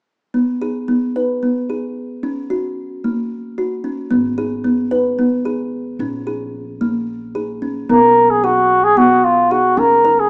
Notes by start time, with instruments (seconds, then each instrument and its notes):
0.34 kalimba B3
0.62 kalimba G#4
0.88 kalimba B3
1.16 kalimba B4
1.43 kalimba B3
1.70 kalimba G#4
2.23 kalimba C#4
2.50 kalimba F#4
3.04 kalimba A#3
3.58 kalimba F#4
3.84 kalimba C#4
4.11 upright bass G#1, kalimba B3
4.38 kalimba G#4
4.64 kalimba B3
4.91 kalimba B4
5.19 kalimba B3
5.45 kalimba G#4
5.99 upright bass A#1, kalimba C#4
6.27 kalimba G#4
6.81 kalimba A#3
7.35 kalimba G#4
7.62 kalimba C#4
7.89 upright bass B1, kalimba B3, flugelhorn A#4
8.30 flugelhorn G#4
8.44 flugelhorn F#4, kalimba G#4
8.84 flugelhorn G#4
8.97 kalimba B3, flugelhorn F#4
9.24 flugelhorn F4
9.51 flugelhorn F#4, kalimba G#4
9.77 upright bass F#1, kalimba C#4, flugelhorn A#4
10.05 kalimba A#4
10.20 flugelhorn G#4